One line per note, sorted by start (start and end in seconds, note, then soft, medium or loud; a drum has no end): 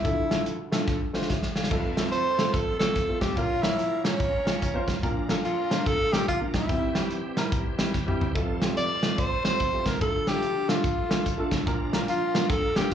0.00 0.22 A3 medium
0.00 0.46 E4 medium
0.04 1.67 D2 medium
0.04 1.67 D3 medium
0.04 0.22 D4 medium
0.04 0.22 F4 medium
0.04 0.23 A4 medium
0.04 kick loud
0.04 closed hi-hat medium
0.30 0.55 A3 medium
0.30 0.55 D4 medium
0.30 0.55 F4 medium
0.30 0.55 A4 medium
0.30 snare loud
0.30 closed hi-hat medium
0.46 closed hi-hat medium
0.72 0.96 A3 medium
0.72 0.96 D4 medium
0.72 0.97 F4 medium
0.72 0.97 A4 medium
0.72 snare loud
0.72 closed hi-hat medium
0.88 kick medium
0.88 snare soft
1.13 1.29 A3 medium
1.13 1.29 D4 medium
1.13 1.30 F4 medium
1.13 1.30 C5 medium
1.13 snare medium
1.22 snare medium
1.29 1.55 G4 medium
1.29 1.54 E5 medium
1.29 kick medium
1.29 snare medium
1.43 snare medium
1.56 1.71 A4 soft
1.56 1.95 F5 medium
1.56 snare medium
1.64 snare medium
1.71 3.34 F1 medium
1.71 3.34 F2 medium
1.71 5.00 F3 medium
1.71 1.88 A3 medium
1.71 3.36 A3 medium
1.71 1.89 C4 medium
1.71 3.36 C4 medium
1.71 1.89 F4 medium
1.71 3.36 A4 medium
1.71 1.89 A4 medium
1.71 kick loud
1.71 crash medium
1.97 2.21 A3 medium
1.97 2.21 C4 medium
1.97 2.22 F4 medium
1.97 2.22 A4 medium
1.97 snare medium
1.97 closed hi-hat medium
2.12 2.55 C5 loud
2.12 closed hi-hat medium
2.38 2.62 A3 medium
2.38 2.63 C4 medium
2.38 2.63 F4 medium
2.38 2.63 A4 medium
2.38 snare loud
2.38 closed hi-hat medium
2.54 2.79 A4 medium
2.54 kick loud
2.54 closed hi-hat medium
2.79 2.95 A3 medium
2.79 2.96 C4 medium
2.79 2.96 F4 medium
2.79 3.19 A4 medium
2.79 2.96 A4 medium
2.79 snare loud
2.79 closed hi-hat medium
2.95 kick medium
2.95 closed hi-hat medium
3.08 3.29 A3 medium
3.08 3.30 C4 medium
3.08 3.30 F4 medium
3.08 3.30 A4 medium
3.21 3.39 G4 medium
3.21 kick medium
3.21 snare loud
3.21 closed hi-hat medium
3.36 4.99 A#1 medium
3.36 4.99 A#2 medium
3.36 3.54 A#3 medium
3.36 6.66 A#3 medium
3.36 3.54 C#4 medium
3.36 5.01 C#4 medium
3.36 3.55 F4 medium
3.36 3.64 F4 medium
3.36 6.66 A#4 medium
3.36 3.55 A#4 medium
3.36 kick medium
3.36 closed hi-hat medium
3.62 3.87 A#3 medium
3.62 3.88 C#4 medium
3.62 4.04 E4 medium
3.62 3.88 F4 medium
3.62 3.88 A#4 medium
3.62 snare medium
3.62 closed hi-hat medium
3.79 closed hi-hat medium
4.04 4.28 A#3 medium
4.04 4.29 C#4 medium
4.04 4.84 C#4 medium
4.04 4.29 F4 medium
4.04 4.29 A#4 medium
4.04 snare loud
4.04 closed hi-hat medium
4.20 kick loud
4.20 closed hi-hat medium
4.45 4.61 A#3 medium
4.45 4.62 C#4 medium
4.45 4.62 F4 medium
4.45 4.62 C#5 medium
4.45 snare loud
4.45 closed hi-hat medium
4.62 kick medium
4.62 closed hi-hat medium
4.74 4.95 A#3 medium
4.74 4.95 C#4 medium
4.74 4.96 F4 medium
4.74 4.96 C5 medium
4.88 kick medium
4.88 snare loud
4.88 closed hi-hat medium
5.02 6.65 A#1 medium
5.02 6.66 A#2 medium
5.02 6.67 F3 medium
5.02 5.20 A#3 medium
5.02 6.67 D4 medium
5.02 5.21 D4 medium
5.02 5.21 F4 medium
5.02 5.21 A#4 medium
5.02 kick loud
5.02 closed hi-hat medium
5.29 5.53 A#3 medium
5.29 5.53 D4 medium
5.29 5.54 F4 medium
5.29 5.54 A4 medium
5.29 snare loud
5.29 closed hi-hat medium
5.45 5.88 F4 medium
5.45 closed hi-hat medium
5.70 5.94 A#3 medium
5.70 5.95 D4 medium
5.70 5.95 F4 medium
5.70 5.95 A#4 medium
5.70 snare loud
5.70 closed hi-hat medium
5.86 6.14 A4 loud
5.86 kick loud
5.86 closed hi-hat medium
6.12 6.27 A#3 medium
6.12 6.28 D4 medium
6.12 6.28 F4 medium
6.12 6.28 G4 medium
6.12 6.28 A#4 medium
6.12 snare loud
6.12 closed hi-hat medium
6.28 6.40 F4 medium
6.28 kick medium
6.28 closed hi-hat loud
6.40 6.61 A#3 medium
6.40 6.62 D4 medium
6.40 6.62 F4 medium
6.40 6.62 A#4 medium
6.54 7.07 E4 medium
6.54 kick medium
6.54 snare loud
6.54 closed hi-hat medium
6.69 8.31 C2 medium
6.69 8.31 C3 medium
6.69 8.33 E3 medium
6.69 6.86 G3 medium
6.69 8.34 G3 medium
6.69 9.98 C4 medium
6.69 6.87 C4 medium
6.69 6.87 E4 medium
6.69 8.33 G4 medium
6.69 6.87 G4 medium
6.69 kick loud
6.69 closed hi-hat medium
6.95 7.19 G3 medium
6.95 7.20 C4 medium
6.95 7.20 E4 medium
6.95 7.20 G4 medium
6.95 snare loud
6.95 closed hi-hat medium
7.10 closed hi-hat medium
7.37 7.61 G3 medium
7.37 7.61 C4 medium
7.37 7.61 E4 medium
7.37 7.61 A#4 medium
7.37 snare loud
7.37 closed hi-hat medium
7.52 kick loud
7.52 closed hi-hat medium
7.78 7.94 G3 medium
7.78 7.94 C4 medium
7.78 7.94 E4 medium
7.78 7.94 G4 medium
7.78 snare loud
7.78 closed hi-hat medium
7.94 kick medium
7.94 snare soft
8.06 8.27 G3 medium
8.06 8.28 C4 medium
8.06 8.28 E4 medium
8.06 8.28 G4 medium
8.06 mid tom medium
8.21 floor tom medium
8.35 9.97 F1 medium
8.35 9.97 F2 medium
8.35 11.64 F3 medium
8.35 8.52 A3 medium
8.35 11.64 A3 medium
8.35 8.53 C4 medium
8.35 8.53 F4 medium
8.35 11.64 A4 medium
8.35 8.53 A4 medium
8.35 kick loud
8.35 closed hi-hat medium
8.61 8.85 A3 medium
8.61 8.85 C4 medium
8.61 8.86 F4 medium
8.61 8.86 G4 medium
8.61 snare loud
8.61 closed hi-hat medium
8.77 9.21 D5 medium
8.77 closed hi-hat medium
9.03 9.27 A3 medium
9.03 9.27 C4 medium
9.03 9.27 F4 medium
9.03 9.28 C5 medium
9.03 snare loud
9.03 closed hi-hat medium
9.18 9.44 C5 medium
9.18 kick loud
9.18 closed hi-hat medium
9.44 9.60 A3 medium
9.44 9.60 C4 medium
9.44 9.60 F4 medium
9.44 9.60 G4 medium
9.44 9.88 C5 medium
9.44 snare loud
9.44 closed hi-hat medium
9.60 kick medium
9.60 closed hi-hat medium
9.72 9.93 A3 medium
9.72 9.93 C4 medium
9.72 9.94 F4 medium
9.72 9.94 G4 medium
9.86 10.01 A#4 medium
9.86 kick medium
9.86 snare loud
9.86 closed hi-hat medium
10.01 11.63 D2 medium
10.01 11.63 D3 medium
10.01 10.18 A3 medium
10.01 10.18 D4 medium
10.01 11.66 D4 medium
10.01 10.19 F4 medium
10.01 10.30 A4 medium
10.01 10.19 A4 medium
10.01 kick loud
10.01 closed hi-hat medium
10.27 10.51 A3 medium
10.27 10.51 D4 medium
10.27 10.51 F4 medium
10.27 10.52 G4 medium
10.27 10.71 G4 medium
10.27 snare loud
10.27 closed hi-hat medium
10.42 closed hi-hat medium
10.68 10.92 A3 medium
10.68 10.93 D4 medium
10.68 10.93 F4 medium
10.68 11.52 F4 medium
10.68 10.93 A4 medium
10.68 snare loud
10.68 closed hi-hat medium
10.84 kick loud
10.84 closed hi-hat medium
11.09 11.25 A3 medium
11.09 11.25 D4 medium
11.09 11.25 F4 medium
11.09 11.26 A4 medium
11.09 snare loud
11.09 closed hi-hat medium
11.26 kick medium
11.26 closed hi-hat medium
11.38 11.59 A3 medium
11.38 11.59 D4 medium
11.38 11.60 F4 medium
11.38 11.60 A4 medium
11.51 kick medium
11.51 snare loud
11.51 closed hi-hat medium
11.66 12.94 A#1 medium
11.66 12.94 A#2 medium
11.66 12.94 F3 medium
11.66 11.84 A#3 medium
11.66 12.94 A#3 medium
11.66 11.84 D4 medium
11.66 12.94 D4 medium
11.66 11.85 F4 medium
11.66 11.85 A#4 medium
11.66 12.94 A#4 medium
11.66 kick loud
11.66 closed hi-hat medium
11.93 12.17 A#3 medium
11.93 12.17 D4 medium
11.93 12.17 F4 medium
11.93 12.18 A#4 medium
11.93 snare medium
11.93 closed hi-hat medium
12.08 12.52 F4 medium
12.08 closed hi-hat medium
12.34 12.58 A#3 medium
12.34 12.59 D4 medium
12.34 12.59 F4 medium
12.34 12.59 A#4 medium
12.34 snare loud
12.34 closed hi-hat medium
12.50 12.78 A4 medium
12.50 kick loud
12.50 closed hi-hat medium
12.76 12.91 A#3 medium
12.76 12.92 D4 medium
12.76 12.92 F4 medium
12.76 12.94 G4 medium
12.76 12.92 A#4 medium
12.76 snare loud
12.76 closed hi-hat medium